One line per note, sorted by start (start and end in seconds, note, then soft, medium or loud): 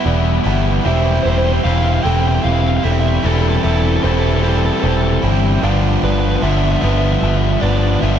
0.00 0.83 E3 medium
0.00 5.59 E3 medium
0.00 0.47 G3 medium
0.00 0.45 B3 medium
0.00 0.44 E4 loud
0.00 5.59 G5 medium
0.05 0.39 E1 medium
0.05 0.84 E3 medium
0.05 0.85 G3 medium
0.05 0.83 B3 medium
0.05 0.86 E4 medium
0.05 0.85 D5 medium
0.44 0.79 G1 medium
0.44 0.84 G3 medium
0.44 0.83 B3 medium
0.44 0.86 E4 medium
0.84 1.18 E1 medium
0.84 1.63 E3 loud
0.84 1.27 G3 medium
0.84 1.26 C4 loud
0.84 1.24 E4 loud
0.84 5.60 G4 medium
0.84 5.59 C5 medium
0.84 1.25 E5 loud
1.23 1.58 E1 medium
1.23 1.65 C4 medium
1.23 1.66 E4 medium
1.23 1.30 C5 loud
1.23 2.05 C5 medium
1.27 1.64 G3 medium
1.27 1.37 C5 medium
1.38 1.45 C5 medium
1.46 1.52 C5 medium
1.53 1.60 C5 medium
1.63 1.98 E1 medium
1.63 2.05 E3 medium
1.63 2.05 G3 medium
1.63 2.03 C4 medium
1.63 2.02 E4 medium
1.63 1.70 F5 loud
1.71 1.78 F5 medium
1.78 1.85 F5 medium
1.85 1.93 F5 medium
1.94 2.01 F5 medium
2.03 2.38 E1 medium
2.03 3.22 E3 medium
2.03 2.86 G3 medium
2.03 2.83 C4 medium
2.03 2.82 E4 medium
2.03 2.83 A4 medium
2.03 2.11 G5 loud
2.11 2.19 G5 medium
2.20 2.27 G5 loud
2.28 2.35 G5 medium
2.35 2.43 G5 medium
2.44 2.78 E1 medium
2.44 3.22 E3 medium
2.44 3.24 G3 medium
2.44 3.24 C4 medium
2.44 3.24 E4 medium
2.44 2.52 F5 loud
2.53 2.60 F5 medium
2.60 2.69 F5 loud
2.69 2.76 F5 medium
2.77 2.84 F5 medium
2.83 3.18 E1 medium
2.83 3.23 G3 medium
2.83 3.24 C4 medium
2.83 3.25 E4 medium
2.83 3.64 A4 medium
2.83 2.91 E5 medium
2.92 3.00 E5 medium
3.00 3.08 E5 loud
3.09 3.17 E5 medium
3.17 3.25 E5 medium
3.23 3.57 E1 medium
3.23 4.02 E3 loud
3.23 3.65 G3 loud
3.23 3.63 C4 loud
3.23 3.62 E4 loud
3.23 3.33 A4 medium
3.33 3.41 A4 medium
3.41 3.49 A4 medium
3.49 3.56 A4 medium
3.56 3.63 A4 medium
3.63 3.97 E1 medium
3.63 4.04 G3 medium
3.63 4.03 C4 medium
3.63 4.04 E4 medium
3.63 3.72 A4 medium
3.72 3.79 A4 medium
3.79 3.86 A4 medium
3.86 3.94 A4 medium
3.96 4.03 A4 medium
4.03 4.70 E1 loud
4.03 4.45 E3 medium
4.03 4.44 G3 medium
4.03 4.42 C4 medium
4.03 4.41 E4 loud
4.03 4.11 A4 medium
4.03 4.81 C5 medium
4.12 4.19 A4 medium
4.19 4.26 A4 medium
4.27 4.34 A4 medium
4.34 4.42 A4 medium
4.43 5.62 E3 medium
4.43 5.24 G3 medium
4.43 5.23 C4 medium
4.43 5.21 E4 medium
4.43 4.49 A4 medium
4.49 4.57 A4 medium
4.58 4.65 A4 medium
4.65 4.73 A4 medium
4.73 4.80 A4 medium
4.80 5.17 E1 medium
4.80 5.60 E3 medium
4.80 5.63 G3 medium
4.80 4.88 A4 medium
4.80 5.63 C5 medium
4.84 5.61 C4 medium
4.84 5.61 E4 medium
4.84 4.96 A4 medium
4.97 5.03 A4 medium
5.03 5.11 A4 medium
5.12 5.20 A4 medium
5.22 5.57 G1 loud
5.22 5.63 G3 medium
5.22 5.61 C4 medium
5.22 5.60 E4 medium
5.62 5.96 G1 loud
5.62 6.45 G2 medium
5.62 6.40 D3 loud
5.62 6.04 F3 loud
5.62 6.03 B3 loud
5.62 6.01 D4 loud
5.62 8.19 F4 medium
5.62 6.44 F4 loud
5.62 8.19 B4 medium
5.62 8.19 D5 medium
5.62 6.03 F5 loud
5.62 8.19 G5 medium
6.02 6.36 G1 medium
6.02 6.42 F3 medium
6.02 6.43 B3 medium
6.02 6.43 D4 medium
6.02 6.12 B4 loud
6.02 6.83 D5 medium
6.12 6.19 B4 medium
6.19 6.28 B4 loud
6.29 6.36 B4 medium
6.37 6.45 B4 medium
6.41 6.76 G1 medium
6.41 6.82 D3 medium
6.41 6.81 F3 medium
6.41 6.80 B3 medium
6.41 6.80 D4 loud
6.41 6.82 F4 medium
6.41 6.50 E5 loud
6.50 6.58 E5 medium
6.58 6.64 E5 loud
6.65 6.71 E5 medium
6.72 6.79 E5 medium
6.81 7.16 G1 loud
6.81 7.99 G2 medium
6.81 8.00 D3 medium
6.81 7.62 F3 medium
6.81 7.61 B3 medium
6.81 7.59 D4 medium
6.81 7.23 F4 medium
6.81 7.61 B4 loud
6.81 6.89 E5 loud
6.90 6.97 E5 medium
6.98 7.04 E5 loud
7.05 7.12 E5 medium
7.13 7.21 E5 loud
7.21 7.56 G1 medium
7.21 8.01 D3 medium
7.21 8.02 F3 medium
7.21 8.03 B3 medium
7.21 8.03 F4 medium
7.21 7.28 E5 loud
7.28 7.36 E5 medium
7.37 7.44 E5 loud
7.44 7.51 E5 medium
7.51 7.59 E5 medium
7.60 7.95 G1 medium
7.60 8.01 F3 medium
7.60 8.01 B3 medium
7.60 8.02 D4 medium
7.60 8.19 B4 medium
7.60 7.69 D5 loud
7.69 7.77 D5 medium
7.77 7.83 D5 medium
7.83 7.91 D5 medium
7.91 7.99 D5 medium
8.01 8.19 G1 medium
8.01 8.19 G2 loud
8.01 8.19 D3 loud
8.01 8.19 F3 loud
8.01 8.19 B3 loud
8.01 8.19 D4 loud
8.01 8.19 F4 loud
8.01 8.09 E5 medium
8.10 8.15 E5 medium
8.16 8.19 E5 medium